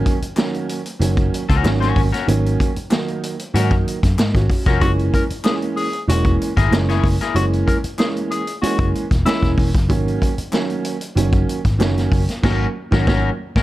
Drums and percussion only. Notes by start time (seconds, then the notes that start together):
0.06 kick, closed hi-hat
0.22 closed hi-hat
0.37 snare, clap
0.54 closed hi-hat
0.69 closed hi-hat
0.86 closed hi-hat
1.01 closed hi-hat
1.17 kick, closed hi-hat
1.34 closed hi-hat
1.50 kick, snare, closed hi-hat
1.65 snare, clap
1.82 snare, closed hi-hat
1.96 kick, open hi-hat
2.14 snare, closed hi-hat
2.28 closed hi-hat
2.46 closed hi-hat
2.60 kick, closed hi-hat
2.76 closed hi-hat
2.91 snare, clap
3.08 closed hi-hat
3.23 closed hi-hat
3.39 closed hi-hat
3.55 closed hi-hat
3.71 kick, closed hi-hat
3.88 closed hi-hat
4.03 kick, snare, closed hi-hat
4.19 snare, clap
4.35 kick, snare, closed hi-hat
4.50 kick, open hi-hat
4.66 kick, snare, closed hi-hat
4.81 kick, closed hi-hat
4.99 closed hi-hat
5.14 kick, closed hi-hat
5.30 closed hi-hat
5.44 snare, clap
5.62 closed hi-hat
5.77 open hi-hat
5.93 closed hi-hat
6.09 closed hi-hat
6.25 kick, closed hi-hat
6.41 closed hi-hat
6.57 kick, snare, closed hi-hat
6.73 snare, clap
6.89 snare, closed hi-hat
7.04 kick, open hi-hat
7.21 snare, closed hi-hat
7.36 closed hi-hat
7.53 closed hi-hat
7.68 kick, closed hi-hat
7.84 closed hi-hat
7.99 snare, clap
8.16 closed hi-hat
8.31 closed hi-hat
8.47 closed hi-hat
8.63 closed hi-hat
8.79 kick
8.95 closed hi-hat
9.11 kick, snare, closed hi-hat
9.27 snare, clap
9.43 kick, snare, closed hi-hat
9.58 kick, open hi-hat
9.75 kick, snare, closed hi-hat
9.90 kick, closed hi-hat
10.08 closed hi-hat
10.22 kick, closed hi-hat
10.38 closed hi-hat
10.53 snare, clap
10.70 closed hi-hat
10.85 closed hi-hat
11.01 closed hi-hat
11.17 closed hi-hat
11.33 kick, closed hi-hat
11.49 closed hi-hat
11.65 kick, snare, closed hi-hat
11.81 snare, clap
11.97 snare, closed hi-hat
12.12 kick, open hi-hat
12.29 snare, closed hi-hat
12.44 kick, snare, crash
12.92 kick, snare
13.07 kick, snare
13.56 kick, snare